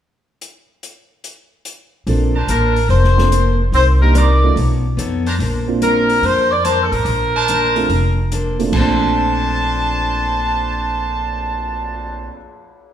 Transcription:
0.41 closed hi-hat
0.83 closed hi-hat
1.24 closed hi-hat
1.65 closed hi-hat
2.07 A#1 A#3 C4 D4 F4 A4 C5, open hi-hat
2.35 D4 A#4 C5 A5
2.48 A1 A#3 D4 A4 A#4 C5, closed hi-hat
2.76 open hi-hat
2.89 F1 A#3 D4 A4 C5, open hi-hat
3.04 snare
3.17 C4 D4 F4 A4, snare
3.31 A#3 D4 A4 C5, closed hi-hat
3.72 C2 C4 D#4 A#4 C5 D5, open hi-hat
4.01 A#3 D4 D#4 G4 A#4
4.15 C4 D#4 A#4 C5 D5 A#5, closed hi-hat
4.43 A3 C#4 D#4 F4
4.56 B1 B3 D#4 A4 C#5, open hi-hat
4.97 F2 B3 D#4 A4 C#5, closed hi-hat
5.26 D4 A#4 C5 A#5, open hi-hat
5.39 A#1 A#3 D4 A4 C5, open hi-hat
5.67 A#3 C4 D4 F4
5.81 A#3 D4 A4 A#4 C5, closed hi-hat
6.09 open hi-hat
6.22 F2 A#3 D4 A4 C5, open hi-hat
6.51 D5
6.65 A#3 D4 A4 A#4 C5 A5, closed hi-hat
6.83 A4
6.92 A1 A#4, open hi-hat
7.05 A#1 A#3 D4 A4 C5, open hi-hat
7.34 D4 A#4 C5 A5
7.48 A#3 D4 A4 C5, closed hi-hat
7.75 A3 C4 D4 F4, open hi-hat
7.89 F1 A#3 D4 A4 C5, open hi-hat
8.32 A#3 D4 A4 C5, closed hi-hat
8.59 A#2 A3 C4 D4 F4, open hi-hat
8.67 A#2 F3
8.72 A#1 A3 C4 D4 C5 A5, kick, crash
8.79 D4 A4 C5
9.01 cymbal swell

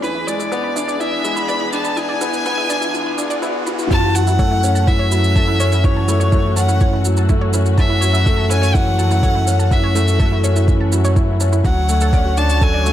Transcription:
Already playing: riser
0.02 E2 E3 D4 G#4 B4 B5, shaker
0.15 E4
0.27 G#3 D5, shaker
0.40 E4, shaker
0.52 B3, shaker
0.64 B5
0.76 D4 E4, shaker
0.88 D5, shaker
1.00 E3 E4 E5, shaker
1.24 G#3 B5, shaker
1.37 E4 B5, shaker
1.48 B3 D5, shaker
1.60 E4
1.72 D4 A5, shaker
1.85 B5, shaker
1.97 E3 E4 G#5, shaker
2.09 D5
2.21 B3 E4, shaker
2.33 shaker
2.46 B3 B5, shaker
2.58 E4
2.70 D4 D5, shaker
2.81 E4, shaker
2.94 E3, shaker
3.06 B5
3.18 D4 E4, shaker
3.30 D5, shaker
3.42 B3 E4, shaker
3.66 E3 B5, shaker
3.79 E4, shaker
3.90 F#2 E3 A3 E4 F#4 A5, kick, shaker
4.14 F#3 F#5 A5, shaker
4.27 E4, shaker
4.39 A3 C#5, kick, shaker
4.51 E4
4.63 C#4, shaker
4.75 A5, shaker
4.87 E3 E4 E5, kick, shaker
4.99 C#5
5.12 F#3 E4, shaker
5.24 shaker
5.36 A3 A5, kick, shaker
5.47 E4
5.60 C#4 C#5, shaker
5.72 E4, shaker
5.84 E3 C#5, kick, shaker
5.96 A5
6.08 A3 E4, shaker
6.20 C#5, shaker
6.32 A3 E4, kick, shaker
6.56 C#4 F#5 A5, shaker
6.68 E4, shaker
6.81 E3 C#5, kick, shaker
6.93 E4
7.05 F#3, shaker
7.17 A5, shaker
7.29 A3 E4, kick, shaker
7.41 C#5
7.53 C#4 E4, shaker
7.66 shaker
7.78 E3 E5 A5, kick, shaker
7.89 E4
8.01 F#3 C#5, shaker
8.13 E4, shaker
8.26 A3, kick, shaker
8.37 A5
8.50 C#4 E4 G#5, shaker
8.62 C#5, shaker
8.74 E3 E4 F#5, kick, shaker
8.99 F#3 A5, shaker
9.11 E4, shaker
9.23 A3 C#5, kick, shaker
9.35 E4
9.47 C#4, shaker
9.59 A5, shaker
9.71 E3 E4 E5, kick, shaker
9.84 C#5
9.95 A3 E4, shaker
10.08 shaker
10.20 A3 A5, kick, shaker
10.32 E4
10.44 C#4 C#5, shaker
10.56 E4, shaker
10.68 E3, kick, shaker
10.81 A5
10.92 F#3 E4, shaker
11.05 C#5, shaker
11.16 E4, kick, shaker
11.40 C#4 A5, shaker
11.52 E4, shaker
11.64 D2 D3 F#3 F#4 C#5 F#5, kick, shaker
11.89 A3 C#6, shaker
12.01 A4, shaker
12.13 C#4 D5, kick, shaker
12.25 F#4
12.37 D4 A5, shaker
12.49 C#6, shaker
12.61 F#3 A4 G#5, kick, shaker
12.74 D5
12.85 A3 F#4, shaker

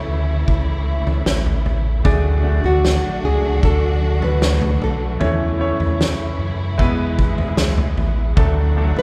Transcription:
Already playing: C#3 E3 A3 C#4 E4 A4 C#5
0.08 D2
0.47 C#2, kick
1.07 floor tom
1.26 A1, snare
1.46 floor tom
1.66 A1, floor tom
2.04 D2 A2 F#3 A3 D4 F#4 G#4 D5, kick, floor tom
2.43 A3 D4 F#4
2.64 D2 F#4, floor tom
2.85 snare
3.23 C#2 G#4
3.63 D2 A4, kick
4.22 B4, floor tom
4.42 snare
4.62 floor tom
4.80 B1 A4, floor tom
5.19 E2 C#3 E3 A3 C#4 E4 C#5, floor tom
5.24 E4
5.59 A3 C#4 E4 C#5
5.80 E2, floor tom
6.01 snare
6.38 F#2
6.78 E2 B2 G#3 B3 E4 B4, kick
7.19 kick
7.38 floor tom
7.57 C#2, snare
7.78 floor tom
7.97 A1, floor tom
8.36 D2 A2 F#3 A3 D4 F#4 A4, kick, floor tom
8.76 F3 A3 D4 A4
8.82 F#3
8.96 D2 C#5, floor tom

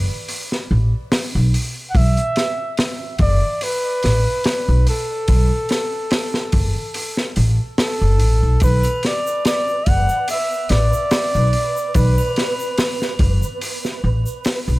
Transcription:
0.29 open hi-hat
0.52 snare
0.71 A1
1.12 snare, open hi-hat
1.35 B1
1.54 open hi-hat
1.90 F#5
1.95 B1 E5, kick, open hi-hat
2.17 closed hi-hat
2.36 snare, open hi-hat
2.77 snare, open hi-hat
3.19 F#1 D5, kick, open hi-hat
3.61 B4, open hi-hat
4.03 A1, snare, open hi-hat
4.44 snare, open hi-hat
4.68 B1
4.87 A4, open hi-hat
5.28 B1, kick, open hi-hat
5.69 snare, open hi-hat
6.11 snare, open hi-hat
6.34 snare
6.52 F#1, kick, open hi-hat
6.94 open hi-hat
7.17 snare
7.36 A1, open hi-hat
7.78 A4, snare, open hi-hat
8.01 F#1
8.19 A1, open hi-hat
8.43 B1
8.60 B1 B4, kick, open hi-hat, shaker
8.83 closed hi-hat, triangle, shaker
9.03 D5, snare, open hi-hat
9.27 shaker
9.45 D5, snare, open hi-hat, shaker
9.68 shaker
9.86 F#1 F#5, kick, open hi-hat
10.09 shaker
10.28 E5, open hi-hat, shaker
10.51 shaker
10.69 A1 D5, snare, open hi-hat
10.93 shaker
11.11 snare, open hi-hat, shaker
11.34 B1, shaker
11.53 open hi-hat
11.77 shaker
11.94 B1 B4, kick, open hi-hat, shaker
12.18 triangle, shaker
12.36 B4, snare, open hi-hat
12.59 shaker
12.78 snare, open hi-hat, shaker
13.01 snare, shaker
13.19 F#1, kick, open hi-hat
13.43 shaker
13.61 open hi-hat, shaker
13.84 snare, shaker
14.04 A1
14.26 shaker
14.45 snare, open hi-hat, shaker
14.68 B1, shaker

